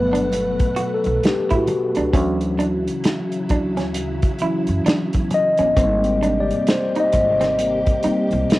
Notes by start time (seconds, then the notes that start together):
Already playing: G1 B2 F#3 A3 B3 B4 F#5
0.13 D4, closed hi-hat, low conga
0.32 closed hi-hat, muted conga
0.59 kick, closed hi-hat
0.76 F#4, muted upright bass stroke, closed hi-hat
0.94 A4
1.04 B1, closed hi-hat, high conga
1.23 G4, muted upright bass stroke, snare, closed hi-hat, high conga
1.50 A1 E4, kick, closed hi-hat
1.55 F#4
1.67 muted clean electric guitar stroke, closed hi-hat, muted conga, high conga, low conga
1.95 C#2 D4, closed hi-hat, high conga
2.13 D2 C#3 E3 F#3 C#4 E4, kick, closed hi-hat, muted conga
2.41 closed hi-hat
2.58 D4, closed hi-hat, muted conga, high conga
2.87 closed hi-hat
3.04 muted clean electric guitar stroke, snare, closed hi-hat, muted conga
3.32 closed hi-hat
3.49 D2 D4, kick, closed hi-hat, muted conga, low conga
3.77 C#4, snare, closed hi-hat, low conga
3.94 closed hi-hat, muted conga
4.22 kick, closed hi-hat
4.39 E3 F#3 E4, muted upright bass stroke, closed hi-hat
4.43 C#4
4.67 F#2, closed hi-hat, high conga
4.86 D4, muted upright bass stroke, snare, closed hi-hat, muted conga, high conga
5.13 E2, kick, closed hi-hat
5.31 D#5, muted clean electric guitar stroke, closed hi-hat, muted conga, high conga, low conga
5.57 G1 C#4, closed hi-hat, high conga
5.77 G#1 C3 G3 A#3 C4 G4, kick, closed hi-hat
6.04 closed hi-hat
6.22 D4, closed hi-hat, muted conga, high conga
6.40 D5
6.51 closed hi-hat
6.67 C5, snare, closed hi-hat
6.95 D#4, closed hi-hat
7.00 D#5
7.12 G#1, muted clean electric guitar stroke, kick, closed hi-hat, muted conga, low conga
7.41 C4, snare, closed hi-hat, low conga
7.59 closed hi-hat, muted conga
7.86 kick, closed hi-hat
8.03 G3 A#3 C4 D#4, muted upright bass stroke, closed hi-hat, muted conga
8.31 C2, closed hi-hat, high conga
8.50 muted upright bass stroke, snare, closed hi-hat, muted conga, high conga